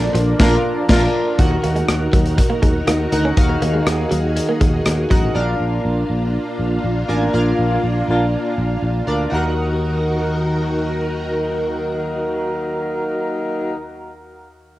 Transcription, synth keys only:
0, 0, Header, 1, 2, 480
1, 0, Start_track
1, 0, Key_signature, -6, "minor"
1, 0, Tempo, 495868
1, 1344, Time_signature, 4, 2, 24, 8
1, 14318, End_track
2, 0, Start_track
2, 0, Title_t, "Synth keys"
2, 0, Program_c, 0, 88
2, 0, Control_c, 0, 64, 127
2, 0, Note_on_c, 0, 46, 67
2, 0, Note_on_c, 0, 62, 81
2, 0, Note_on_c, 0, 65, 75
2, 0, Note_on_c, 0, 69, 70
2, 0, Note_on_c, 0, 70, 89
2, 98, Note_off_c, 0, 65, 0
2, 130, Note_off_c, 0, 70, 0
2, 380, Note_off_c, 0, 62, 0
2, 380, Note_on_c, 0, 62, 106
2, 385, Note_on_c, 0, 65, 100
2, 392, Note_on_c, 0, 70, 98
2, 545, Note_off_c, 0, 62, 0
2, 548, Note_off_c, 0, 65, 0
2, 551, Note_off_c, 0, 70, 0
2, 858, Note_on_c, 0, 62, 108
2, 864, Note_on_c, 0, 65, 98
2, 871, Note_on_c, 0, 70, 107
2, 1024, Note_off_c, 0, 62, 0
2, 1027, Note_off_c, 0, 65, 0
2, 1031, Note_off_c, 0, 70, 0
2, 1338, Note_on_c, 0, 63, 84
2, 1341, Note_on_c, 0, 66, 79
2, 1342, Note_on_c, 0, 51, 74
2, 1345, Note_on_c, 0, 70, 74
2, 1348, Note_on_c, 0, 78, 97
2, 1357, Control_c, 0, 64, 0
2, 1358, Note_off_c, 0, 46, 0
2, 1364, Note_off_c, 0, 69, 0
2, 1553, Control_c, 0, 64, 127
2, 2014, Note_off_c, 0, 63, 0
2, 2015, Note_off_c, 0, 66, 0
2, 2017, Note_off_c, 0, 70, 0
2, 2019, Note_off_c, 0, 78, 0
2, 2024, Note_off_c, 0, 51, 0
2, 3019, Note_on_c, 0, 63, 80
2, 3023, Note_on_c, 0, 66, 69
2, 3027, Note_on_c, 0, 70, 77
2, 3031, Note_on_c, 0, 78, 86
2, 3190, Note_off_c, 0, 63, 0
2, 3192, Note_off_c, 0, 66, 0
2, 3194, Note_off_c, 0, 70, 0
2, 3195, Note_off_c, 0, 78, 0
2, 3260, Note_on_c, 0, 63, 82
2, 3264, Note_on_c, 0, 66, 78
2, 3266, Note_on_c, 0, 51, 69
2, 3267, Note_on_c, 0, 70, 78
2, 3272, Note_on_c, 0, 77, 92
2, 3935, Note_off_c, 0, 63, 0
2, 3937, Note_off_c, 0, 66, 0
2, 3938, Note_off_c, 0, 70, 0
2, 3941, Note_off_c, 0, 77, 0
2, 3946, Note_off_c, 0, 51, 0
2, 4938, Note_on_c, 0, 63, 76
2, 4942, Note_on_c, 0, 66, 70
2, 4946, Note_on_c, 0, 70, 70
2, 4949, Note_on_c, 0, 78, 87
2, 5109, Note_off_c, 0, 63, 0
2, 5111, Note_off_c, 0, 66, 0
2, 5113, Note_off_c, 0, 70, 0
2, 5115, Note_off_c, 0, 78, 0
2, 5175, Note_on_c, 0, 62, 80
2, 5181, Note_on_c, 0, 46, 67
2, 5181, Note_on_c, 0, 65, 72
2, 5183, Note_on_c, 0, 70, 72
2, 5188, Note_on_c, 0, 77, 84
2, 5195, Control_c, 0, 64, 0
2, 5395, Control_c, 0, 64, 127
2, 5852, Note_off_c, 0, 62, 0
2, 5855, Note_off_c, 0, 65, 0
2, 5856, Note_off_c, 0, 70, 0
2, 5859, Note_off_c, 0, 77, 0
2, 5864, Note_off_c, 0, 46, 0
2, 6857, Note_on_c, 0, 62, 77
2, 6861, Note_on_c, 0, 65, 69
2, 6864, Note_on_c, 0, 70, 70
2, 6868, Note_on_c, 0, 80, 83
2, 7028, Note_off_c, 0, 62, 0
2, 7030, Note_off_c, 0, 65, 0
2, 7032, Note_off_c, 0, 70, 0
2, 7034, Note_off_c, 0, 80, 0
2, 7098, Note_on_c, 0, 62, 78
2, 7102, Note_on_c, 0, 65, 75
2, 7105, Note_on_c, 0, 46, 65
2, 7107, Note_on_c, 0, 70, 70
2, 7110, Note_on_c, 0, 77, 84
2, 7774, Note_off_c, 0, 62, 0
2, 7776, Note_off_c, 0, 65, 0
2, 7778, Note_off_c, 0, 70, 0
2, 7780, Note_off_c, 0, 77, 0
2, 7785, Note_off_c, 0, 46, 0
2, 8779, Note_on_c, 0, 62, 76
2, 8783, Note_on_c, 0, 65, 63
2, 8788, Note_on_c, 0, 70, 64
2, 8790, Note_on_c, 0, 74, 81
2, 8950, Note_off_c, 0, 62, 0
2, 8952, Note_off_c, 0, 65, 0
2, 8954, Note_off_c, 0, 70, 0
2, 8955, Note_off_c, 0, 74, 0
2, 9001, Note_on_c, 0, 63, 68
2, 9015, Note_on_c, 0, 66, 65
2, 9023, Note_on_c, 0, 39, 69
2, 9031, Note_on_c, 0, 70, 64
2, 9035, Control_c, 0, 64, 0
2, 9046, Note_on_c, 0, 78, 76
2, 9209, Control_c, 0, 64, 127
2, 13266, Note_off_c, 0, 63, 0
2, 13281, Note_off_c, 0, 66, 0
2, 13288, Note_off_c, 0, 39, 0
2, 13296, Note_off_c, 0, 70, 0
2, 13311, Note_off_c, 0, 78, 0
2, 14318, End_track
0, 0, End_of_file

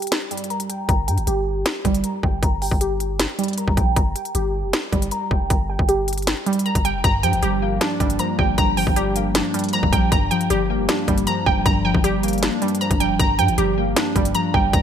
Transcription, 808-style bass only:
0, 0, Header, 1, 2, 480
1, 0, Start_track
1, 0, Key_signature, -2, "minor"
1, 0, Tempo, 384615
1, 1107, Time_signature, 4, 2, 24, 8
1, 18497, End_track
2, 0, Start_track
2, 0, Title_t, "808-style bass"
2, 0, Program_c, 0, 38
2, 1108, Note_on_c, 0, 31, 105
2, 1348, Note_on_c, 0, 43, 97
2, 1367, Note_off_c, 0, 31, 0
2, 1468, Note_on_c, 0, 31, 98
2, 1486, Note_off_c, 0, 43, 0
2, 1582, Note_off_c, 0, 31, 0
2, 1588, Note_on_c, 0, 31, 109
2, 2048, Note_off_c, 0, 31, 0
2, 2306, Note_on_c, 0, 31, 106
2, 2537, Note_off_c, 0, 31, 0
2, 2787, Note_on_c, 0, 31, 100
2, 3018, Note_off_c, 0, 31, 0
2, 3028, Note_on_c, 0, 31, 111
2, 3373, Note_off_c, 0, 31, 0
2, 3388, Note_on_c, 0, 31, 101
2, 4079, Note_off_c, 0, 31, 0
2, 4588, Note_on_c, 0, 31, 102
2, 4700, Note_off_c, 0, 31, 0
2, 4708, Note_on_c, 0, 34, 102
2, 4938, Note_off_c, 0, 34, 0
2, 4948, Note_on_c, 0, 31, 112
2, 5178, Note_off_c, 0, 31, 0
2, 5428, Note_on_c, 0, 31, 115
2, 5787, Note_on_c, 0, 29, 98
2, 5806, Note_off_c, 0, 31, 0
2, 5901, Note_off_c, 0, 29, 0
2, 6147, Note_on_c, 0, 31, 101
2, 6377, Note_off_c, 0, 31, 0
2, 6627, Note_on_c, 0, 29, 101
2, 6858, Note_off_c, 0, 29, 0
2, 6867, Note_on_c, 0, 31, 112
2, 7213, Note_off_c, 0, 31, 0
2, 7228, Note_on_c, 0, 31, 101
2, 7919, Note_off_c, 0, 31, 0
2, 8427, Note_on_c, 0, 31, 108
2, 8667, Note_on_c, 0, 29, 97
2, 8686, Note_off_c, 0, 31, 0
2, 8781, Note_off_c, 0, 29, 0
2, 8787, Note_on_c, 0, 31, 102
2, 9027, Note_on_c, 0, 43, 99
2, 9046, Note_off_c, 0, 31, 0
2, 9147, Note_on_c, 0, 31, 95
2, 9166, Note_off_c, 0, 43, 0
2, 9262, Note_off_c, 0, 31, 0
2, 9267, Note_on_c, 0, 31, 110
2, 9728, Note_off_c, 0, 31, 0
2, 9987, Note_on_c, 0, 31, 104
2, 10218, Note_off_c, 0, 31, 0
2, 10467, Note_on_c, 0, 31, 99
2, 10698, Note_off_c, 0, 31, 0
2, 10707, Note_on_c, 0, 31, 112
2, 11053, Note_off_c, 0, 31, 0
2, 11068, Note_on_c, 0, 31, 99
2, 11759, Note_off_c, 0, 31, 0
2, 12268, Note_on_c, 0, 31, 106
2, 12380, Note_off_c, 0, 31, 0
2, 12387, Note_on_c, 0, 34, 104
2, 12618, Note_off_c, 0, 34, 0
2, 12628, Note_on_c, 0, 31, 114
2, 12858, Note_off_c, 0, 31, 0
2, 13108, Note_on_c, 0, 31, 113
2, 13468, Note_on_c, 0, 29, 102
2, 13487, Note_off_c, 0, 31, 0
2, 13582, Note_off_c, 0, 29, 0
2, 13827, Note_on_c, 0, 31, 103
2, 14057, Note_off_c, 0, 31, 0
2, 14307, Note_on_c, 0, 29, 100
2, 14538, Note_off_c, 0, 29, 0
2, 14548, Note_on_c, 0, 31, 110
2, 14893, Note_off_c, 0, 31, 0
2, 14908, Note_on_c, 0, 31, 102
2, 15599, Note_off_c, 0, 31, 0
2, 16108, Note_on_c, 0, 31, 108
2, 16347, Note_on_c, 0, 29, 99
2, 16366, Note_off_c, 0, 31, 0
2, 16461, Note_off_c, 0, 29, 0
2, 16468, Note_on_c, 0, 31, 106
2, 16708, Note_on_c, 0, 43, 100
2, 16727, Note_off_c, 0, 31, 0
2, 16828, Note_on_c, 0, 31, 98
2, 16847, Note_off_c, 0, 43, 0
2, 16942, Note_off_c, 0, 31, 0
2, 16948, Note_on_c, 0, 31, 112
2, 17408, Note_off_c, 0, 31, 0
2, 17667, Note_on_c, 0, 31, 105
2, 17898, Note_off_c, 0, 31, 0
2, 18148, Note_on_c, 0, 31, 101
2, 18378, Note_off_c, 0, 31, 0
2, 18388, Note_on_c, 0, 31, 107
2, 18497, Note_off_c, 0, 31, 0
2, 18497, End_track
0, 0, End_of_file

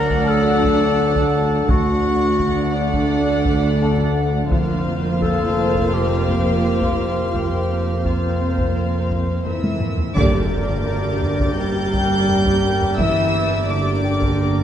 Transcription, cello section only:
0, 0, Header, 1, 2, 480
1, 0, Start_track
1, 0, Tempo, 705882
1, 1152, Time_signature, 4, 2, 24, 8
1, 9951, End_track
2, 0, Start_track
2, 0, Title_t, "Cello section"
2, 0, Program_c, 0, 48
2, 0, Note_on_c, 0, 38, 69
2, 1122, Note_off_c, 0, 38, 0
2, 1149, Note_on_c, 0, 38, 63
2, 3043, Note_off_c, 0, 38, 0
2, 3073, Note_on_c, 0, 41, 60
2, 4965, Note_off_c, 0, 41, 0
2, 4990, Note_on_c, 0, 41, 40
2, 6404, Note_off_c, 0, 41, 0
2, 6429, Note_on_c, 0, 52, 43
2, 6883, Note_off_c, 0, 52, 0
2, 6912, Note_on_c, 0, 50, 67
2, 7845, Note_off_c, 0, 50, 0
2, 7870, Note_on_c, 0, 55, 63
2, 8812, Note_off_c, 0, 55, 0
2, 8831, Note_on_c, 0, 52, 67
2, 9311, Note_off_c, 0, 52, 0
2, 9311, Note_on_c, 0, 50, 50
2, 9951, Note_off_c, 0, 50, 0
2, 9951, End_track
0, 0, End_of_file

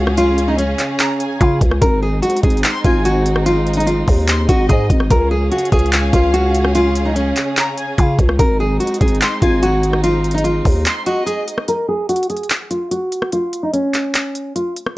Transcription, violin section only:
0, 0, Header, 1, 2, 480
1, 0, Start_track
1, 0, Tempo, 410959
1, 203, Time_signature, 4, 2, 24, 8
1, 17495, End_track
2, 0, Start_track
2, 0, Title_t, "Violin section"
2, 0, Program_c, 0, 48
2, 1161, Note_on_c, 0, 82, 98
2, 1390, Note_off_c, 0, 82, 0
2, 1404, Note_on_c, 0, 80, 83
2, 1632, Note_off_c, 0, 80, 0
2, 3087, Note_on_c, 0, 84, 102
2, 3313, Note_off_c, 0, 84, 0
2, 3326, Note_on_c, 0, 80, 86
2, 3553, Note_off_c, 0, 80, 0
2, 5003, Note_on_c, 0, 84, 92
2, 5231, Note_off_c, 0, 84, 0
2, 5243, Note_on_c, 0, 75, 86
2, 5920, Note_off_c, 0, 75, 0
2, 6921, Note_on_c, 0, 80, 84
2, 7150, Note_off_c, 0, 80, 0
2, 7158, Note_on_c, 0, 77, 92
2, 7389, Note_off_c, 0, 77, 0
2, 8841, Note_on_c, 0, 82, 102
2, 9070, Note_off_c, 0, 82, 0
2, 9084, Note_on_c, 0, 80, 79
2, 9312, Note_off_c, 0, 80, 0
2, 10767, Note_on_c, 0, 84, 96
2, 10993, Note_off_c, 0, 84, 0
2, 11006, Note_on_c, 0, 80, 92
2, 11232, Note_off_c, 0, 80, 0
2, 12683, Note_on_c, 0, 84, 95
2, 12911, Note_off_c, 0, 84, 0
2, 12923, Note_on_c, 0, 75, 82
2, 13600, Note_off_c, 0, 75, 0
2, 17495, End_track
0, 0, End_of_file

